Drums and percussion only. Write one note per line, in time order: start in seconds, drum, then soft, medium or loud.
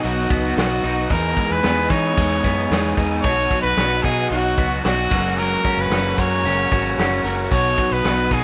0.04 hi-hat pedal medium
0.04 open hi-hat medium
0.30 kick loud
0.30 hi-hat pedal medium
0.30 open hi-hat medium
0.58 snare loud
0.58 hi-hat pedal medium
0.58 open hi-hat medium
0.84 hi-hat pedal medium
0.84 open hi-hat medium
1.10 kick loud
1.10 hi-hat pedal medium
1.10 open hi-hat medium
1.37 kick medium
1.37 hi-hat pedal medium
1.37 open hi-hat medium
1.63 snare loud
1.63 hi-hat pedal medium
1.63 open hi-hat medium
1.90 kick medium
1.90 hi-hat pedal medium
1.90 open hi-hat medium
2.17 kick loud
2.17 hi-hat pedal medium
2.17 open hi-hat medium
2.44 kick medium
2.44 hi-hat pedal medium
2.44 open hi-hat medium
2.71 snare loud
2.71 hi-hat pedal medium
2.71 open hi-hat medium
2.97 kick medium
2.97 hi-hat pedal medium
2.97 open hi-hat medium
3.24 kick loud
3.24 hi-hat pedal medium
3.24 open hi-hat medium
3.51 kick medium
3.51 hi-hat pedal medium
3.51 open hi-hat medium
3.77 snare loud
3.77 hi-hat pedal medium
3.77 open hi-hat medium
4.04 kick medium
4.04 hi-hat pedal medium
4.04 open hi-hat medium
4.31 snare soft
4.31 hi-hat pedal medium
4.31 open hi-hat medium
4.57 kick medium
4.57 hi-hat pedal medium
4.57 open hi-hat medium
4.84 snare loud
4.84 hi-hat pedal medium
4.84 open hi-hat medium
5.11 kick loud
5.11 crash medium
5.38 hi-hat pedal medium
5.38 open hi-hat medium
5.64 kick medium
5.64 hi-hat pedal medium
5.64 open hi-hat medium
5.91 snare loud
5.91 hi-hat pedal medium
5.91 open hi-hat medium
6.18 kick medium
6.18 hi-hat pedal medium
6.18 open hi-hat medium
6.45 snare soft
6.45 hi-hat pedal medium
6.45 open hi-hat medium
6.71 kick loud
6.71 hi-hat pedal medium
6.71 open hi-hat medium
6.99 snare loud
6.99 hi-hat pedal medium
6.99 open hi-hat medium
7.25 hi-hat pedal medium
7.25 open hi-hat medium
7.52 kick loud
7.52 hi-hat pedal medium
7.52 open hi-hat medium
7.78 kick medium
7.78 hi-hat pedal medium
7.78 open hi-hat medium
8.04 snare loud
8.04 hi-hat pedal medium
8.04 open hi-hat loud
8.31 kick medium
8.31 hi-hat pedal medium
8.31 open hi-hat medium